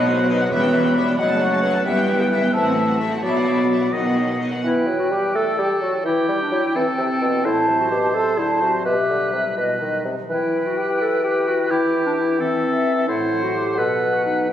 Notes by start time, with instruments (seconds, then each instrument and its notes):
Already playing: double bass section B1, cello section B2, harp B2, bassoon F#3, clarinet B3, oboe F#5, flute section B5
0.06 harp F#3, viola section F#3, violin section D#4 D#5, french horn section C5
0.18 viola section B3, violin section F#4 F#5
0.28 viola section F#3, harp D#4 B4, violin section D#4 D#5, french horn section B4
0.40 viola section B3, violin section F#4 F#5
0.51 double bass section E1, timpani E2, harp E2, cello section E2, viola section G3, clarinet B3, violin section E4 E5, french horn section B4, flute section B5
0.62 viola section B3, violin section G4 G5
0.73 harp G3, viola section G3, violin section E4 E5
0.85 viola section B3, violin section G4 G5, french horn section C5
0.94 viola section G3, harp E4, violin section E4 E5, french horn section D5
1.07 viola section B3, violin section G4 G5
1.17 double bass section F#1, harp F#2, cello section F#2, bassoon F#3, viola section F#3, clarinet A3, violin section D#4 F#5, french horn section D#5, flute section F#5, oboe F#5
1.29 viola section A3, violin section F#4 A5
1.39 viola section F#3, harp A3, violin section D#4 F#5, french horn section C#5
1.51 viola section A3, violin section F#4 A5
1.62 viola section F#3, harp D#4 A4, violin section D#4 F#5, french horn section B4
1.73 viola section A3, violin section F#4 A5
1.85 double bass section G1, harp G2, cello section G2, bassoon E3, viola section G3, clarinet B3, violin section E4 E5, french horn section G4, flute section G5
1.96 viola section B3, violin section G4 G5
2.07 viola section G3, harp G3, violin section E4 E5
2.18 viola section B3, violin section G4 G5, french horn section A4
2.29 viola section G3, harp E4 B4, violin section E4 E5, french horn section B4
2.41 viola section B3, violin section G4 G5
2.52 double bass section A1, harp A2, cello section A2, bassoon E3, viola section A3, clarinet C4, violin section E4 E5, french horn section C5, oboe E5, flute section A5
2.64 viola section C4, violin section F#4 F#5
2.76 harp F#3, viola section A3, violin section E4 E5
2.87 viola section C4, violin section F#4 F#5, french horn section G4
2.98 viola section A3, harp E4 C5, violin section E4 E5, french horn section A4
3.10 viola section C4, violin section F#4 F#5
3.21 double bass section B1, harp B2, cello section B2, viola section F#3, bassoon F#3, clarinet B3, violin section E4 E5, french horn section F#4, oboe D5, flute section B5
3.33 viola section B3, violin section F#4 F#5
3.45 viola section F#3, harp F#3, violin section E4 E5
3.57 viola section B3, violin section F#4 F#5
3.69 viola section F#3, harp E4, violin section E4 E5
3.80 viola section B3, violin section F#4 F#5
3.92 double bass section B1, harp B2, cello section B2, bassoon D#3, viola section F#3, clarinet B3, violin section D#4 D#5, oboe D#5, flute section F#5
4.05 viola section B3, violin section F#4 F#5
4.16 viola section F#3, harp F#3, violin section D#4 D#5
4.28 viola section B3, violin section F#4 F#5
4.39 viola section F#3, harp D#4 B4, violin section D#4 D#5
4.52 viola section B3, violin section F#4 F#5
4.63 bassoon E3, harp E3, clarinet E4, oboe B4, flute section G5
4.87 bassoon F#3, harp E4
4.99 clarinet F#4
5.11 bassoon G3, clarinet G4, harp B4
5.35 bassoon A3, oboe A4, clarinet A4
5.58 bassoon G3, clarinet G4, harp B4
5.81 bassoon F#3, clarinet F#4
6.05 bassoon E3, harp E3, clarinet E4, oboe G4, flute section G5
6.28 bassoon G3, harp E4
6.42 clarinet D4
6.52 bassoon F#3, harp E4 B4, clarinet E4
6.75 bassoon E3, harp E3, clarinet C4, oboe A4
6.98 bassoon C3, harp E4
7.21 bassoon B2, harp E4 A4
7.44 bassoon A2, harp A2, clarinet E4, oboe C5, flute section A5
7.68 bassoon C3, harp F#3
7.80 clarinet F#4
7.90 bassoon B2, harp F#4, clarinet G4
8.13 bassoon C3, clarinet A4, flute section A5
8.37 bassoon D3, clarinet E4, harp F#4
8.61 bassoon C3, harp F#3, clarinet F#4
8.85 harp B2, bassoon B2, clarinet G4, oboe B4, flute section E5
9.09 bassoon D3, harp G3
9.32 bassoon C3, harp E4 B4
9.56 bassoon B2, harp B2, oboe B4, flute section D#5
9.80 bassoon D#3, harp F#3
10.05 bassoon C3, harp D#4 B4
10.29 bassoon E3, harp E3, clarinet E4, oboe B4, flute section G5
10.54 harp E4
10.66 clarinet F#4
10.77 clarinet G4, harp B4
11.01 harp G4, clarinet A4
11.24 clarinet G4
11.47 harp E4, clarinet F#4
11.70 harp E3, clarinet E4, oboe G4, flute section G5
12.06 clarinet D4
12.16 harp E4 B4, clarinet E4
12.39 harp E3, clarinet C4, oboe A4, flute section E5
12.63 harp E4
12.86 harp E4 A4
13.08 bassoon A2, harp A2, clarinet E4, oboe C5, flute section F#5
13.32 harp F#3
13.43 clarinet F#4
13.55 harp F#4 C5, clarinet G4
13.78 bassoon B2, harp B2, clarinet A4, oboe B4, flute section F#5
14.02 harp F#3
14.13 clarinet F#4
14.25 clarinet D#4, harp D#4 B4
14.49 bassoon E3, clarinet E4